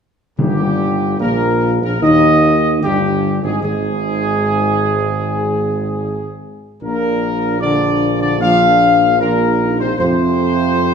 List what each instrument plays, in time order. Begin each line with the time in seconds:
0.38 tuba G1, trombone section G2, timpani D#3, french horn section G3, trumpet section G4
1.19 tuba A#1, trombone section A#2, french horn section A#3, trumpet section A#4
1.82 tuba A#1, trombone section A#2, french horn section A#3, trumpet section A#4
2.02 tuba D#2, trombone section D#3, french horn section D#4, trumpet section D#5
2.82 tuba G1, trombone section G2, french horn section G3, trumpet section G4
3.42 tuba G#1, trombone section G#2, french horn section G#3, trumpet section G#4
3.62 tuba G#1, trombone section G#2, french horn section G#3, trumpet section G#4
6.82 tuba A#1, trombone section A#2, french horn section A#3 D4, trumpet section A#4
7.60 trombone section D3, french horn section A#3 D4, trumpet section D5
8.21 trombone section D3, trumpet section D5
8.40 trombone section F3, french horn section A#3 D4, trumpet section F5
9.19 trombone section A#2, french horn section A#3 D4, trumpet section A#4
9.60 french horn section D#4
9.80 trombone section C3, trumpet section C5
9.98 tuba F2, trombone section C3, french horn section A3 F4, trumpet section C5